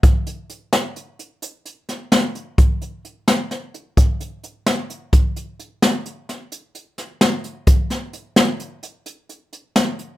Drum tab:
HH |xxxxxxxxxxx|xxxxxxxxxxx|xxxxxxxxxxx|xxxxxxxxxxx|
SD |---o----oo-|---oo----o-|---o-o--oo-|-o-o-----o-|
BD |o----------|o-----o----|o----------|o----------|